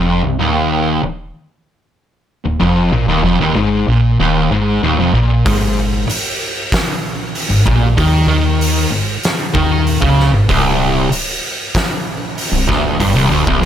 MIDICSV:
0, 0, Header, 1, 5, 480
1, 0, Start_track
1, 0, Tempo, 629591
1, 303, Time_signature, 4, 2, 24, 8
1, 10409, End_track
2, 0, Start_track
2, 0, Title_t, "Distorted electric guitar"
2, 0, Program_c, 0, 30
2, 0, Note_on_c, 0, 41, 89
2, 176, Note_off_c, 0, 41, 0
2, 182, Note_on_c, 0, 36, 70
2, 297, Note_off_c, 0, 36, 0
2, 300, Note_on_c, 0, 39, 101
2, 776, Note_off_c, 0, 39, 0
2, 1868, Note_on_c, 0, 39, 77
2, 1976, Note_off_c, 0, 39, 0
2, 1979, Note_on_c, 0, 41, 105
2, 2217, Note_off_c, 0, 41, 0
2, 2227, Note_on_c, 0, 46, 102
2, 2341, Note_off_c, 0, 46, 0
2, 2348, Note_on_c, 0, 39, 96
2, 2462, Note_off_c, 0, 39, 0
2, 2469, Note_on_c, 0, 41, 103
2, 2582, Note_off_c, 0, 41, 0
2, 2590, Note_on_c, 0, 39, 105
2, 2703, Note_off_c, 0, 39, 0
2, 2710, Note_on_c, 0, 44, 100
2, 2943, Note_off_c, 0, 44, 0
2, 2954, Note_on_c, 0, 46, 89
2, 3185, Note_off_c, 0, 46, 0
2, 3198, Note_on_c, 0, 39, 107
2, 3428, Note_off_c, 0, 39, 0
2, 3438, Note_on_c, 0, 44, 92
2, 3668, Note_off_c, 0, 44, 0
2, 3680, Note_on_c, 0, 39, 109
2, 3789, Note_off_c, 0, 39, 0
2, 3803, Note_on_c, 0, 41, 107
2, 3910, Note_off_c, 0, 41, 0
2, 3916, Note_on_c, 0, 46, 93
2, 4147, Note_off_c, 0, 46, 0
2, 4155, Note_on_c, 0, 44, 98
2, 4622, Note_off_c, 0, 44, 0
2, 5713, Note_on_c, 0, 44, 80
2, 5833, Note_off_c, 0, 44, 0
2, 5839, Note_on_c, 0, 46, 111
2, 6068, Note_off_c, 0, 46, 0
2, 6071, Note_on_c, 0, 51, 100
2, 6304, Note_off_c, 0, 51, 0
2, 6314, Note_on_c, 0, 51, 112
2, 6785, Note_off_c, 0, 51, 0
2, 6793, Note_on_c, 0, 44, 73
2, 6984, Note_off_c, 0, 44, 0
2, 7268, Note_on_c, 0, 51, 99
2, 7622, Note_off_c, 0, 51, 0
2, 7634, Note_on_c, 0, 49, 114
2, 7864, Note_off_c, 0, 49, 0
2, 7871, Note_on_c, 0, 44, 71
2, 7990, Note_off_c, 0, 44, 0
2, 7995, Note_on_c, 0, 36, 106
2, 8459, Note_off_c, 0, 36, 0
2, 9551, Note_on_c, 0, 36, 71
2, 9660, Note_off_c, 0, 36, 0
2, 9663, Note_on_c, 0, 38, 99
2, 9896, Note_off_c, 0, 38, 0
2, 9907, Note_on_c, 0, 43, 100
2, 10018, Note_off_c, 0, 43, 0
2, 10023, Note_on_c, 0, 36, 104
2, 10136, Note_off_c, 0, 36, 0
2, 10140, Note_on_c, 0, 38, 93
2, 10254, Note_off_c, 0, 38, 0
2, 10266, Note_on_c, 0, 36, 101
2, 10377, Note_off_c, 0, 36, 0
2, 10380, Note_on_c, 0, 41, 97
2, 10409, Note_off_c, 0, 41, 0
2, 10409, End_track
3, 0, Start_track
3, 0, Title_t, "Analog synth bass"
3, 0, Program_c, 1, 38
3, 0, Note_on_c, 1, 29, 106
3, 169, Note_off_c, 1, 29, 0
3, 186, Note_on_c, 1, 24, 89
3, 297, Note_off_c, 1, 24, 0
3, 302, Note_on_c, 1, 27, 93
3, 754, Note_off_c, 1, 27, 0
3, 779, Note_on_c, 1, 27, 37
3, 1006, Note_off_c, 1, 27, 0
3, 1866, Note_on_c, 1, 27, 77
3, 1979, Note_off_c, 1, 27, 0
3, 1987, Note_on_c, 1, 29, 90
3, 2211, Note_off_c, 1, 29, 0
3, 2222, Note_on_c, 1, 34, 94
3, 2334, Note_off_c, 1, 34, 0
3, 2339, Note_on_c, 1, 27, 95
3, 2456, Note_off_c, 1, 27, 0
3, 2462, Note_on_c, 1, 29, 110
3, 2578, Note_off_c, 1, 29, 0
3, 2588, Note_on_c, 1, 27, 92
3, 2701, Note_off_c, 1, 27, 0
3, 2709, Note_on_c, 1, 32, 98
3, 2933, Note_off_c, 1, 32, 0
3, 2952, Note_on_c, 1, 34, 104
3, 3175, Note_off_c, 1, 34, 0
3, 3197, Note_on_c, 1, 27, 89
3, 3418, Note_off_c, 1, 27, 0
3, 3432, Note_on_c, 1, 32, 94
3, 3655, Note_off_c, 1, 32, 0
3, 3675, Note_on_c, 1, 27, 97
3, 3782, Note_off_c, 1, 27, 0
3, 3787, Note_on_c, 1, 29, 95
3, 3901, Note_off_c, 1, 29, 0
3, 3912, Note_on_c, 1, 34, 94
3, 4135, Note_off_c, 1, 34, 0
3, 4165, Note_on_c, 1, 32, 105
3, 4608, Note_off_c, 1, 32, 0
3, 5711, Note_on_c, 1, 32, 83
3, 5823, Note_off_c, 1, 32, 0
3, 5845, Note_on_c, 1, 34, 97
3, 6062, Note_off_c, 1, 34, 0
3, 6083, Note_on_c, 1, 39, 94
3, 6298, Note_off_c, 1, 39, 0
3, 6303, Note_on_c, 1, 39, 98
3, 6756, Note_off_c, 1, 39, 0
3, 6793, Note_on_c, 1, 32, 82
3, 7015, Note_off_c, 1, 32, 0
3, 7281, Note_on_c, 1, 39, 97
3, 7611, Note_off_c, 1, 39, 0
3, 7639, Note_on_c, 1, 37, 91
3, 7858, Note_off_c, 1, 37, 0
3, 7862, Note_on_c, 1, 32, 86
3, 7977, Note_off_c, 1, 32, 0
3, 8000, Note_on_c, 1, 24, 105
3, 8443, Note_off_c, 1, 24, 0
3, 8467, Note_on_c, 1, 24, 46
3, 8690, Note_off_c, 1, 24, 0
3, 9542, Note_on_c, 1, 24, 81
3, 9655, Note_off_c, 1, 24, 0
3, 9671, Note_on_c, 1, 26, 97
3, 9891, Note_off_c, 1, 26, 0
3, 9912, Note_on_c, 1, 31, 94
3, 10017, Note_off_c, 1, 31, 0
3, 10021, Note_on_c, 1, 24, 95
3, 10134, Note_off_c, 1, 24, 0
3, 10139, Note_on_c, 1, 26, 95
3, 10252, Note_off_c, 1, 26, 0
3, 10267, Note_on_c, 1, 24, 101
3, 10367, Note_off_c, 1, 24, 0
3, 10372, Note_on_c, 1, 29, 94
3, 10409, Note_off_c, 1, 29, 0
3, 10409, End_track
4, 0, Start_track
4, 0, Title_t, "Muted distorted electric guitar strokes"
4, 788, Note_on_c, 9, 29, 59
4, 864, Note_off_c, 9, 29, 0
4, 4631, Note_on_c, 9, 29, 51
4, 4707, Note_off_c, 9, 29, 0
4, 8468, Note_on_c, 9, 29, 63
4, 8544, Note_off_c, 9, 29, 0
4, 10409, End_track
5, 0, Start_track
5, 0, Title_t, "Drums"
5, 4162, Note_on_c, 9, 36, 106
5, 4166, Note_on_c, 9, 46, 54
5, 4238, Note_off_c, 9, 36, 0
5, 4242, Note_off_c, 9, 46, 0
5, 4647, Note_on_c, 9, 46, 54
5, 4723, Note_off_c, 9, 46, 0
5, 5126, Note_on_c, 9, 36, 111
5, 5126, Note_on_c, 9, 46, 59
5, 5139, Note_on_c, 9, 38, 114
5, 5202, Note_off_c, 9, 36, 0
5, 5202, Note_off_c, 9, 46, 0
5, 5216, Note_off_c, 9, 38, 0
5, 5605, Note_on_c, 9, 46, 58
5, 5681, Note_off_c, 9, 46, 0
5, 5846, Note_on_c, 9, 36, 101
5, 5922, Note_off_c, 9, 36, 0
5, 6085, Note_on_c, 9, 36, 97
5, 6086, Note_on_c, 9, 46, 55
5, 6161, Note_off_c, 9, 36, 0
5, 6162, Note_off_c, 9, 46, 0
5, 6565, Note_on_c, 9, 46, 54
5, 6641, Note_off_c, 9, 46, 0
5, 7040, Note_on_c, 9, 46, 59
5, 7054, Note_on_c, 9, 38, 100
5, 7116, Note_off_c, 9, 46, 0
5, 7130, Note_off_c, 9, 38, 0
5, 7280, Note_on_c, 9, 36, 115
5, 7356, Note_off_c, 9, 36, 0
5, 7523, Note_on_c, 9, 46, 50
5, 7599, Note_off_c, 9, 46, 0
5, 7640, Note_on_c, 9, 36, 102
5, 7717, Note_off_c, 9, 36, 0
5, 7775, Note_on_c, 9, 38, 30
5, 7851, Note_off_c, 9, 38, 0
5, 7998, Note_on_c, 9, 36, 95
5, 8000, Note_on_c, 9, 46, 50
5, 8075, Note_off_c, 9, 36, 0
5, 8077, Note_off_c, 9, 46, 0
5, 8478, Note_on_c, 9, 46, 54
5, 8554, Note_off_c, 9, 46, 0
5, 8956, Note_on_c, 9, 46, 49
5, 8957, Note_on_c, 9, 36, 98
5, 8970, Note_on_c, 9, 38, 102
5, 9032, Note_off_c, 9, 46, 0
5, 9033, Note_off_c, 9, 36, 0
5, 9046, Note_off_c, 9, 38, 0
5, 9437, Note_on_c, 9, 46, 54
5, 9513, Note_off_c, 9, 46, 0
5, 9674, Note_on_c, 9, 36, 100
5, 9688, Note_on_c, 9, 38, 33
5, 9750, Note_off_c, 9, 36, 0
5, 9764, Note_off_c, 9, 38, 0
5, 9913, Note_on_c, 9, 36, 91
5, 9915, Note_on_c, 9, 46, 58
5, 9990, Note_off_c, 9, 36, 0
5, 9991, Note_off_c, 9, 46, 0
5, 10271, Note_on_c, 9, 36, 104
5, 10348, Note_off_c, 9, 36, 0
5, 10409, End_track
0, 0, End_of_file